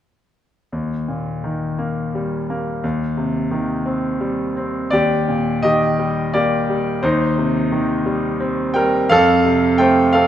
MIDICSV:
0, 0, Header, 1, 2, 480
1, 0, Start_track
1, 0, Key_signature, -3, "major"
1, 0, Tempo, 722022
1, 479, Time_signature, 3, 2, 24, 8
1, 955, Tempo, 692841
1, 2875, Tempo, 710900
1, 4315, Tempo, 691244
1, 7046, End_track
2, 0, Start_track
2, 0, Title_t, "Grand piano"
2, 0, Program_c, 0, 0
2, 482, Note_on_c, 0, 39, 34
2, 605, Control_c, 0, 64, 127
2, 720, Note_on_c, 0, 46, 26
2, 956, Note_on_c, 0, 51, 32
2, 1196, Note_on_c, 0, 58, 29
2, 1448, Note_on_c, 0, 55, 32
2, 1656, Note_off_c, 0, 46, 0
2, 1681, Note_off_c, 0, 58, 0
2, 1692, Note_on_c, 0, 58, 31
2, 1896, Note_off_c, 0, 39, 0
2, 1896, Note_off_c, 0, 51, 0
2, 1912, Note_off_c, 0, 55, 0
2, 1920, Note_off_c, 0, 58, 0
2, 1925, Note_on_c, 0, 39, 44
2, 1933, Control_c, 0, 64, 0
2, 2043, Control_c, 0, 64, 127
2, 2157, Note_on_c, 0, 48, 34
2, 2393, Note_on_c, 0, 51, 41
2, 2631, Note_on_c, 0, 60, 33
2, 2873, Note_on_c, 0, 55, 37
2, 3085, Note_off_c, 0, 48, 0
2, 3108, Note_off_c, 0, 60, 0
2, 3118, Note_on_c, 0, 60, 38
2, 3324, Note_off_c, 0, 51, 0
2, 3327, Note_off_c, 0, 39, 0
2, 3337, Note_off_c, 0, 55, 0
2, 3346, Note_on_c, 0, 74, 73
2, 3348, Note_off_c, 0, 60, 0
2, 3354, Note_on_c, 0, 39, 43
2, 3362, Control_c, 0, 64, 0
2, 3364, Note_on_c, 0, 67, 58
2, 3480, Control_c, 0, 64, 127
2, 3598, Note_on_c, 0, 46, 36
2, 3804, Note_off_c, 0, 74, 0
2, 3814, Note_off_c, 0, 67, 0
2, 3832, Note_on_c, 0, 75, 69
2, 3836, Note_on_c, 0, 51, 40
2, 3844, Note_on_c, 0, 67, 51
2, 4078, Note_on_c, 0, 55, 36
2, 4287, Note_off_c, 0, 75, 0
2, 4294, Note_off_c, 0, 67, 0
2, 4312, Note_on_c, 0, 74, 62
2, 4315, Note_on_c, 0, 58, 40
2, 4318, Note_on_c, 0, 67, 49
2, 4535, Note_off_c, 0, 46, 0
2, 4553, Note_off_c, 0, 55, 0
2, 4563, Note_on_c, 0, 55, 42
2, 4772, Note_off_c, 0, 39, 0
2, 4772, Note_off_c, 0, 51, 0
2, 4772, Note_off_c, 0, 67, 0
2, 4784, Note_off_c, 0, 58, 0
2, 4791, Note_on_c, 0, 72, 66
2, 4794, Note_off_c, 0, 55, 0
2, 4795, Note_on_c, 0, 39, 53
2, 4802, Note_on_c, 0, 63, 58
2, 4808, Control_c, 0, 64, 0
2, 4811, Note_off_c, 0, 74, 0
2, 4920, Control_c, 0, 64, 127
2, 5033, Note_on_c, 0, 48, 41
2, 5273, Note_on_c, 0, 51, 43
2, 5483, Note_off_c, 0, 72, 0
2, 5488, Note_off_c, 0, 63, 0
2, 5508, Note_on_c, 0, 55, 39
2, 5747, Note_on_c, 0, 60, 45
2, 5961, Note_off_c, 0, 48, 0
2, 5977, Note_off_c, 0, 55, 0
2, 5979, Note_on_c, 0, 79, 72
2, 5987, Note_on_c, 0, 55, 44
2, 5995, Note_on_c, 0, 70, 62
2, 6200, Note_off_c, 0, 39, 0
2, 6201, Note_off_c, 0, 51, 0
2, 6213, Note_off_c, 0, 60, 0
2, 6216, Note_off_c, 0, 70, 0
2, 6221, Note_off_c, 0, 55, 0
2, 6227, Note_on_c, 0, 77, 92
2, 6231, Note_on_c, 0, 41, 60
2, 6232, Note_off_c, 0, 79, 0
2, 6238, Control_c, 0, 64, 0
2, 6243, Note_on_c, 0, 69, 82
2, 6364, Control_c, 0, 64, 127
2, 6470, Note_on_c, 0, 48, 45
2, 6683, Note_off_c, 0, 77, 0
2, 6691, Note_off_c, 0, 69, 0
2, 6704, Note_on_c, 0, 79, 74
2, 6712, Note_on_c, 0, 57, 51
2, 6719, Note_on_c, 0, 72, 57
2, 6941, Note_off_c, 0, 72, 0
2, 6943, Note_on_c, 0, 77, 74
2, 6958, Note_off_c, 0, 79, 0
2, 6959, Note_on_c, 0, 69, 55
2, 6962, Note_on_c, 0, 60, 38
2, 7046, Note_off_c, 0, 41, 0
2, 7046, Note_off_c, 0, 48, 0
2, 7046, Note_off_c, 0, 57, 0
2, 7046, Note_off_c, 0, 60, 0
2, 7046, Note_off_c, 0, 69, 0
2, 7046, Note_off_c, 0, 77, 0
2, 7046, End_track
0, 0, End_of_file